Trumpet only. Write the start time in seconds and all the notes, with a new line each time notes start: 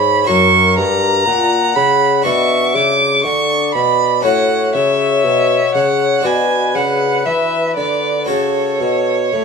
Already playing: C#5
0.28 A#4
1.27 F#5
2.25 E5
3.24 D5
4.24 C#5
6.25 B4
8.29 A4
9.33 A4